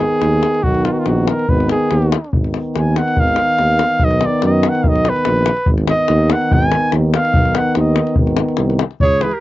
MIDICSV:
0, 0, Header, 1, 7, 480
1, 0, Start_track
1, 0, Key_signature, -7, "minor"
1, 0, Tempo, 421644
1, 739, Time_signature, 2, 2, 24, 8
1, 5055, Tempo, 415225
1, 10791, End_track
2, 0, Start_track
2, 0, Title_t, "Flugelhorn"
2, 0, Program_c, 0, 56
2, 0, Note_on_c, 0, 68, 96
2, 719, Note_on_c, 0, 66, 90
2, 736, Note_off_c, 0, 68, 0
2, 965, Note_on_c, 0, 65, 69
2, 982, Note_off_c, 0, 66, 0
2, 1050, Note_on_c, 0, 66, 65
2, 1067, Note_off_c, 0, 65, 0
2, 1128, Note_on_c, 0, 65, 65
2, 1145, Note_off_c, 0, 66, 0
2, 1222, Note_on_c, 0, 66, 63
2, 1239, Note_off_c, 0, 65, 0
2, 1464, Note_on_c, 0, 70, 76
2, 1481, Note_off_c, 0, 66, 0
2, 1698, Note_on_c, 0, 71, 87
2, 1715, Note_off_c, 0, 70, 0
2, 1938, Note_off_c, 0, 71, 0
2, 1945, Note_on_c, 0, 68, 82
2, 2619, Note_off_c, 0, 68, 0
2, 3143, Note_on_c, 0, 80, 68
2, 3386, Note_on_c, 0, 78, 88
2, 3403, Note_off_c, 0, 80, 0
2, 3637, Note_on_c, 0, 77, 108
2, 3654, Note_off_c, 0, 78, 0
2, 4600, Note_on_c, 0, 75, 102
2, 4617, Note_off_c, 0, 77, 0
2, 4843, Note_on_c, 0, 74, 88
2, 4860, Note_off_c, 0, 75, 0
2, 5068, Note_off_c, 0, 74, 0
2, 5077, Note_on_c, 0, 75, 78
2, 5342, Note_on_c, 0, 78, 88
2, 5360, Note_off_c, 0, 75, 0
2, 5506, Note_on_c, 0, 77, 60
2, 5524, Note_off_c, 0, 78, 0
2, 5564, Note_on_c, 0, 75, 98
2, 5581, Note_off_c, 0, 77, 0
2, 5804, Note_on_c, 0, 71, 98
2, 5821, Note_off_c, 0, 75, 0
2, 6516, Note_off_c, 0, 71, 0
2, 6739, Note_on_c, 0, 75, 93
2, 7229, Note_on_c, 0, 78, 86
2, 7246, Note_off_c, 0, 75, 0
2, 7474, Note_on_c, 0, 80, 105
2, 7491, Note_off_c, 0, 78, 0
2, 7951, Note_off_c, 0, 80, 0
2, 8190, Note_on_c, 0, 77, 94
2, 8677, Note_on_c, 0, 78, 82
2, 8694, Note_off_c, 0, 77, 0
2, 8911, Note_off_c, 0, 78, 0
2, 8917, Note_on_c, 0, 75, 58
2, 9357, Note_off_c, 0, 75, 0
2, 10342, Note_on_c, 0, 73, 117
2, 10583, Note_on_c, 0, 71, 96
2, 10600, Note_off_c, 0, 73, 0
2, 10707, Note_on_c, 0, 70, 67
2, 10724, Note_off_c, 0, 71, 0
2, 10791, Note_off_c, 0, 70, 0
2, 10791, End_track
3, 0, Start_track
3, 0, Title_t, "Clarinet"
3, 0, Program_c, 1, 71
3, 10355, Note_on_c, 1, 68, 87
3, 10595, Note_off_c, 1, 68, 0
3, 10595, Note_on_c, 1, 68, 68
3, 10708, Note_on_c, 1, 67, 63
3, 10725, Note_off_c, 1, 68, 0
3, 10791, Note_off_c, 1, 67, 0
3, 10791, End_track
4, 0, Start_track
4, 0, Title_t, "Euphonium"
4, 0, Program_c, 2, 58
4, 0, Note_on_c, 2, 59, 56
4, 703, Note_off_c, 2, 59, 0
4, 729, Note_on_c, 2, 59, 73
4, 1678, Note_off_c, 2, 59, 0
4, 1702, Note_on_c, 2, 59, 71
4, 2460, Note_off_c, 2, 59, 0
4, 2670, Note_on_c, 2, 59, 58
4, 4542, Note_off_c, 2, 59, 0
4, 4583, Note_on_c, 2, 59, 76
4, 6283, Note_off_c, 2, 59, 0
4, 6512, Note_on_c, 2, 59, 59
4, 8392, Note_off_c, 2, 59, 0
4, 8432, Note_on_c, 2, 59, 78
4, 9367, Note_off_c, 2, 59, 0
4, 9387, Note_on_c, 2, 59, 70
4, 10138, Note_off_c, 2, 59, 0
4, 10595, Note_on_c, 2, 56, 60
4, 10687, Note_off_c, 2, 56, 0
4, 10791, End_track
5, 0, Start_track
5, 0, Title_t, "Euphonium"
5, 0, Program_c, 3, 58
5, 0, Note_on_c, 3, 51, 67
5, 695, Note_off_c, 3, 51, 0
5, 732, Note_on_c, 3, 51, 81
5, 1680, Note_off_c, 3, 51, 0
5, 1702, Note_on_c, 3, 51, 73
5, 2460, Note_off_c, 3, 51, 0
5, 2664, Note_on_c, 3, 51, 68
5, 4539, Note_off_c, 3, 51, 0
5, 4574, Note_on_c, 3, 51, 90
5, 6278, Note_off_c, 3, 51, 0
5, 6507, Note_on_c, 3, 51, 74
5, 8390, Note_off_c, 3, 51, 0
5, 8424, Note_on_c, 3, 51, 82
5, 9364, Note_off_c, 3, 51, 0
5, 9383, Note_on_c, 3, 51, 76
5, 10136, Note_off_c, 3, 51, 0
5, 10582, Note_on_c, 3, 52, 60
5, 10677, Note_off_c, 3, 52, 0
5, 10791, End_track
6, 0, Start_track
6, 0, Title_t, "Tuba"
6, 0, Program_c, 4, 58
6, 239, Note_on_c, 4, 39, 101
6, 509, Note_off_c, 4, 39, 0
6, 724, Note_on_c, 4, 35, 94
6, 993, Note_off_c, 4, 35, 0
6, 1208, Note_on_c, 4, 34, 104
6, 1477, Note_off_c, 4, 34, 0
6, 1686, Note_on_c, 4, 32, 94
6, 1955, Note_off_c, 4, 32, 0
6, 2174, Note_on_c, 4, 39, 102
6, 2440, Note_off_c, 4, 39, 0
6, 2655, Note_on_c, 4, 32, 82
6, 2921, Note_off_c, 4, 32, 0
6, 3137, Note_on_c, 4, 39, 101
6, 3402, Note_off_c, 4, 39, 0
6, 3611, Note_on_c, 4, 32, 89
6, 3877, Note_off_c, 4, 32, 0
6, 4087, Note_on_c, 4, 39, 103
6, 4353, Note_off_c, 4, 39, 0
6, 4569, Note_on_c, 4, 35, 105
6, 4833, Note_off_c, 4, 35, 0
6, 5044, Note_on_c, 4, 42, 105
6, 5313, Note_off_c, 4, 42, 0
6, 5528, Note_on_c, 4, 35, 95
6, 5797, Note_off_c, 4, 35, 0
6, 6002, Note_on_c, 4, 34, 94
6, 6273, Note_off_c, 4, 34, 0
6, 6488, Note_on_c, 4, 32, 85
6, 6757, Note_off_c, 4, 32, 0
6, 6965, Note_on_c, 4, 39, 115
6, 7235, Note_off_c, 4, 39, 0
6, 7451, Note_on_c, 4, 32, 95
6, 7719, Note_off_c, 4, 32, 0
6, 7926, Note_on_c, 4, 39, 105
6, 8195, Note_off_c, 4, 39, 0
6, 8414, Note_on_c, 4, 35, 87
6, 8681, Note_off_c, 4, 35, 0
6, 8894, Note_on_c, 4, 39, 108
6, 9160, Note_off_c, 4, 39, 0
6, 9375, Note_on_c, 4, 32, 97
6, 9640, Note_off_c, 4, 32, 0
6, 9842, Note_on_c, 4, 36, 111
6, 10110, Note_off_c, 4, 36, 0
6, 10326, Note_on_c, 4, 37, 92
6, 10592, Note_off_c, 4, 37, 0
6, 10791, End_track
7, 0, Start_track
7, 0, Title_t, "Davul"
7, 245, Note_on_c, 9, 37, 60
7, 359, Note_off_c, 9, 37, 0
7, 487, Note_on_c, 9, 37, 64
7, 601, Note_off_c, 9, 37, 0
7, 620, Note_on_c, 9, 37, 21
7, 724, Note_on_c, 9, 43, 67
7, 734, Note_off_c, 9, 37, 0
7, 838, Note_off_c, 9, 43, 0
7, 850, Note_on_c, 9, 37, 22
7, 963, Note_off_c, 9, 37, 0
7, 967, Note_on_c, 9, 37, 55
7, 1080, Note_off_c, 9, 37, 0
7, 1203, Note_on_c, 9, 37, 55
7, 1317, Note_off_c, 9, 37, 0
7, 1452, Note_on_c, 9, 37, 72
7, 1566, Note_off_c, 9, 37, 0
7, 1586, Note_on_c, 9, 37, 20
7, 1692, Note_on_c, 9, 43, 82
7, 1700, Note_off_c, 9, 37, 0
7, 1806, Note_off_c, 9, 43, 0
7, 1824, Note_on_c, 9, 37, 26
7, 1929, Note_off_c, 9, 37, 0
7, 1929, Note_on_c, 9, 37, 67
7, 2043, Note_off_c, 9, 37, 0
7, 2170, Note_on_c, 9, 37, 56
7, 2284, Note_off_c, 9, 37, 0
7, 2301, Note_on_c, 9, 37, 20
7, 2415, Note_off_c, 9, 37, 0
7, 2417, Note_on_c, 9, 37, 78
7, 2530, Note_off_c, 9, 37, 0
7, 2555, Note_on_c, 9, 37, 22
7, 2652, Note_on_c, 9, 43, 83
7, 2669, Note_off_c, 9, 37, 0
7, 2766, Note_off_c, 9, 43, 0
7, 2782, Note_on_c, 9, 37, 23
7, 2891, Note_off_c, 9, 37, 0
7, 2891, Note_on_c, 9, 37, 55
7, 3005, Note_off_c, 9, 37, 0
7, 3137, Note_on_c, 9, 37, 61
7, 3250, Note_off_c, 9, 37, 0
7, 3372, Note_on_c, 9, 37, 66
7, 3486, Note_off_c, 9, 37, 0
7, 3505, Note_on_c, 9, 37, 21
7, 3605, Note_on_c, 9, 43, 79
7, 3619, Note_off_c, 9, 37, 0
7, 3719, Note_off_c, 9, 43, 0
7, 3732, Note_on_c, 9, 37, 22
7, 3825, Note_off_c, 9, 37, 0
7, 3825, Note_on_c, 9, 37, 62
7, 3939, Note_off_c, 9, 37, 0
7, 4081, Note_on_c, 9, 37, 50
7, 4195, Note_off_c, 9, 37, 0
7, 4317, Note_on_c, 9, 37, 74
7, 4431, Note_off_c, 9, 37, 0
7, 4441, Note_on_c, 9, 37, 19
7, 4547, Note_on_c, 9, 43, 84
7, 4555, Note_off_c, 9, 37, 0
7, 4661, Note_off_c, 9, 43, 0
7, 4676, Note_on_c, 9, 37, 27
7, 4789, Note_off_c, 9, 37, 0
7, 4789, Note_on_c, 9, 37, 69
7, 4903, Note_off_c, 9, 37, 0
7, 5032, Note_on_c, 9, 37, 64
7, 5147, Note_off_c, 9, 37, 0
7, 5277, Note_on_c, 9, 37, 75
7, 5392, Note_off_c, 9, 37, 0
7, 5412, Note_on_c, 9, 37, 23
7, 5517, Note_on_c, 9, 43, 95
7, 5528, Note_off_c, 9, 37, 0
7, 5632, Note_off_c, 9, 43, 0
7, 5651, Note_on_c, 9, 37, 27
7, 5759, Note_off_c, 9, 37, 0
7, 5759, Note_on_c, 9, 37, 68
7, 5874, Note_off_c, 9, 37, 0
7, 5890, Note_on_c, 9, 37, 24
7, 5991, Note_off_c, 9, 37, 0
7, 5991, Note_on_c, 9, 37, 70
7, 6106, Note_off_c, 9, 37, 0
7, 6123, Note_on_c, 9, 37, 20
7, 6231, Note_off_c, 9, 37, 0
7, 6231, Note_on_c, 9, 37, 78
7, 6347, Note_off_c, 9, 37, 0
7, 6359, Note_on_c, 9, 37, 24
7, 6467, Note_on_c, 9, 43, 91
7, 6474, Note_off_c, 9, 37, 0
7, 6582, Note_off_c, 9, 43, 0
7, 6600, Note_on_c, 9, 37, 27
7, 6713, Note_off_c, 9, 37, 0
7, 6713, Note_on_c, 9, 37, 74
7, 6829, Note_off_c, 9, 37, 0
7, 6952, Note_on_c, 9, 37, 67
7, 7068, Note_off_c, 9, 37, 0
7, 7201, Note_on_c, 9, 37, 79
7, 7317, Note_off_c, 9, 37, 0
7, 7337, Note_on_c, 9, 37, 22
7, 7452, Note_off_c, 9, 37, 0
7, 7453, Note_on_c, 9, 43, 95
7, 7569, Note_off_c, 9, 43, 0
7, 7580, Note_on_c, 9, 37, 24
7, 7685, Note_off_c, 9, 37, 0
7, 7685, Note_on_c, 9, 37, 70
7, 7801, Note_off_c, 9, 37, 0
7, 7924, Note_on_c, 9, 37, 63
7, 8040, Note_off_c, 9, 37, 0
7, 8172, Note_on_c, 9, 37, 80
7, 8287, Note_off_c, 9, 37, 0
7, 8302, Note_on_c, 9, 37, 27
7, 8405, Note_on_c, 9, 43, 99
7, 8417, Note_off_c, 9, 37, 0
7, 8520, Note_off_c, 9, 43, 0
7, 8538, Note_on_c, 9, 37, 25
7, 8647, Note_off_c, 9, 37, 0
7, 8647, Note_on_c, 9, 37, 77
7, 8763, Note_off_c, 9, 37, 0
7, 8882, Note_on_c, 9, 37, 64
7, 8998, Note_off_c, 9, 37, 0
7, 9120, Note_on_c, 9, 37, 70
7, 9236, Note_off_c, 9, 37, 0
7, 9250, Note_on_c, 9, 37, 23
7, 9350, Note_on_c, 9, 43, 93
7, 9365, Note_off_c, 9, 37, 0
7, 9466, Note_off_c, 9, 43, 0
7, 9484, Note_on_c, 9, 37, 25
7, 9592, Note_off_c, 9, 37, 0
7, 9592, Note_on_c, 9, 37, 77
7, 9708, Note_off_c, 9, 37, 0
7, 9731, Note_on_c, 9, 37, 22
7, 9827, Note_off_c, 9, 37, 0
7, 9827, Note_on_c, 9, 37, 61
7, 9942, Note_off_c, 9, 37, 0
7, 9977, Note_on_c, 9, 37, 25
7, 10085, Note_off_c, 9, 37, 0
7, 10085, Note_on_c, 9, 37, 76
7, 10201, Note_off_c, 9, 37, 0
7, 10218, Note_on_c, 9, 37, 21
7, 10327, Note_on_c, 9, 43, 83
7, 10334, Note_off_c, 9, 37, 0
7, 10442, Note_off_c, 9, 43, 0
7, 10570, Note_on_c, 9, 37, 66
7, 10686, Note_off_c, 9, 37, 0
7, 10689, Note_on_c, 9, 37, 24
7, 10791, Note_off_c, 9, 37, 0
7, 10791, End_track
0, 0, End_of_file